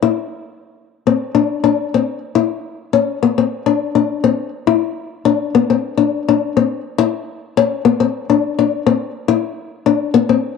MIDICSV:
0, 0, Header, 1, 2, 480
1, 0, Start_track
1, 0, Tempo, 578035
1, 30, Time_signature, 4, 2, 24, 8
1, 8781, End_track
2, 0, Start_track
2, 0, Title_t, "Nylon-string guitar"
2, 0, Program_c, 0, 24
2, 21, Note_on_c, 0, 64, 91
2, 227, Note_off_c, 0, 64, 0
2, 887, Note_on_c, 0, 60, 67
2, 1086, Note_off_c, 0, 60, 0
2, 1118, Note_on_c, 0, 62, 69
2, 1321, Note_off_c, 0, 62, 0
2, 1359, Note_on_c, 0, 62, 69
2, 1562, Note_off_c, 0, 62, 0
2, 1613, Note_on_c, 0, 60, 63
2, 1811, Note_off_c, 0, 60, 0
2, 1953, Note_on_c, 0, 64, 78
2, 2157, Note_off_c, 0, 64, 0
2, 2434, Note_on_c, 0, 61, 75
2, 2638, Note_off_c, 0, 61, 0
2, 2679, Note_on_c, 0, 59, 67
2, 2785, Note_off_c, 0, 59, 0
2, 2806, Note_on_c, 0, 60, 62
2, 3008, Note_off_c, 0, 60, 0
2, 3040, Note_on_c, 0, 62, 63
2, 3244, Note_off_c, 0, 62, 0
2, 3281, Note_on_c, 0, 62, 63
2, 3485, Note_off_c, 0, 62, 0
2, 3519, Note_on_c, 0, 60, 70
2, 3723, Note_off_c, 0, 60, 0
2, 3879, Note_on_c, 0, 64, 93
2, 4081, Note_off_c, 0, 64, 0
2, 4361, Note_on_c, 0, 62, 88
2, 4562, Note_off_c, 0, 62, 0
2, 4606, Note_on_c, 0, 59, 76
2, 4709, Note_off_c, 0, 59, 0
2, 4733, Note_on_c, 0, 60, 78
2, 4931, Note_off_c, 0, 60, 0
2, 4961, Note_on_c, 0, 62, 74
2, 5164, Note_off_c, 0, 62, 0
2, 5219, Note_on_c, 0, 62, 80
2, 5414, Note_off_c, 0, 62, 0
2, 5453, Note_on_c, 0, 60, 71
2, 5651, Note_off_c, 0, 60, 0
2, 5800, Note_on_c, 0, 64, 99
2, 6000, Note_off_c, 0, 64, 0
2, 6288, Note_on_c, 0, 61, 91
2, 6484, Note_off_c, 0, 61, 0
2, 6518, Note_on_c, 0, 59, 86
2, 6623, Note_off_c, 0, 59, 0
2, 6644, Note_on_c, 0, 60, 75
2, 6844, Note_off_c, 0, 60, 0
2, 6889, Note_on_c, 0, 62, 74
2, 7086, Note_off_c, 0, 62, 0
2, 7130, Note_on_c, 0, 62, 75
2, 7327, Note_off_c, 0, 62, 0
2, 7362, Note_on_c, 0, 60, 76
2, 7562, Note_off_c, 0, 60, 0
2, 7708, Note_on_c, 0, 64, 104
2, 7911, Note_off_c, 0, 64, 0
2, 8188, Note_on_c, 0, 62, 84
2, 8390, Note_off_c, 0, 62, 0
2, 8420, Note_on_c, 0, 59, 81
2, 8530, Note_off_c, 0, 59, 0
2, 8547, Note_on_c, 0, 60, 77
2, 8752, Note_off_c, 0, 60, 0
2, 8781, End_track
0, 0, End_of_file